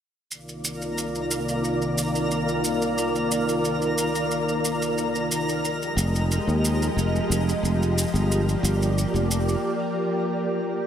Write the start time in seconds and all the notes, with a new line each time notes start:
0.30 C2 D#3 A#3 F4 A#4 D5 A#5, shaker
0.49 shaker
0.65 shaker
0.82 shaker
0.98 shaker
1.15 shaker
1.31 shaker
1.49 shaker
1.64 shaker
1.82 shaker
1.98 shaker
2.15 shaker
2.31 shaker
2.49 shaker
2.64 shaker
2.82 shaker
2.98 shaker
3.15 shaker
3.31 shaker
3.49 shaker
3.65 shaker
3.82 shaker
3.98 shaker
4.15 shaker
4.31 shaker
4.49 shaker
4.65 shaker
4.82 shaker
4.98 shaker
5.15 shaker
5.31 shaker
5.49 shaker
5.63 F3 G#3 G4 D#5, shaker
5.82 shaker
5.97 F1, shaker
6.15 shaker
6.31 shaker
6.47 D#2, shaker
6.65 shaker
6.82 shaker
6.96 F1, shaker
7.16 shaker
7.30 F1, shaker
7.49 shaker
7.63 F1, shaker
7.82 shaker
7.98 shaker
8.14 G1, shaker
8.29 A#3 D5, shaker
8.49 shaker
8.63 G1, shaker
8.82 shaker
8.98 shaker
9.14 F1, shaker
9.31 shaker
9.49 shaker